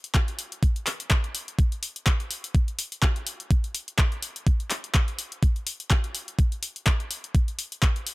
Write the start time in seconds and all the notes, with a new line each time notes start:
0.04 closed hi-hat
0.15 kick, clap, closed hi-hat
0.28 closed hi-hat
0.39 open hi-hat
0.52 closed hi-hat
0.63 kick, closed hi-hat
0.76 closed hi-hat
0.87 clap, open hi-hat
1.00 closed hi-hat
1.11 kick, clap, closed hi-hat
1.24 closed hi-hat
1.35 open hi-hat
1.48 closed hi-hat
1.59 kick, closed hi-hat
1.72 closed hi-hat
1.83 open hi-hat
1.96 closed hi-hat
2.07 kick, clap, closed hi-hat
2.20 closed hi-hat
2.31 open hi-hat
2.44 closed hi-hat
2.55 kick, closed hi-hat
2.68 closed hi-hat
2.79 open hi-hat
2.92 closed hi-hat
3.02 kick, clap, closed hi-hat
3.16 closed hi-hat
3.27 open hi-hat
3.40 closed hi-hat
3.51 kick, closed hi-hat
3.64 closed hi-hat
3.75 open hi-hat
3.88 closed hi-hat
3.98 kick, clap, closed hi-hat
4.12 closed hi-hat
4.23 open hi-hat
4.36 closed hi-hat
4.47 kick, closed hi-hat
4.60 closed hi-hat
4.70 clap, open hi-hat
4.84 closed hi-hat
4.94 kick, clap, closed hi-hat
5.08 closed hi-hat
5.19 open hi-hat
5.32 closed hi-hat
5.43 kick, closed hi-hat
5.56 closed hi-hat
5.67 open hi-hat
5.80 closed hi-hat
5.90 kick, clap, closed hi-hat
6.04 closed hi-hat
6.15 open hi-hat
6.28 closed hi-hat
6.39 kick, closed hi-hat
6.52 closed hi-hat
6.63 open hi-hat
6.76 closed hi-hat
6.87 kick, clap, closed hi-hat
7.00 closed hi-hat
7.11 open hi-hat
7.24 closed hi-hat
7.35 kick, closed hi-hat
7.48 closed hi-hat
7.59 open hi-hat
7.72 closed hi-hat
7.83 kick, clap, closed hi-hat
7.96 closed hi-hat
8.07 open hi-hat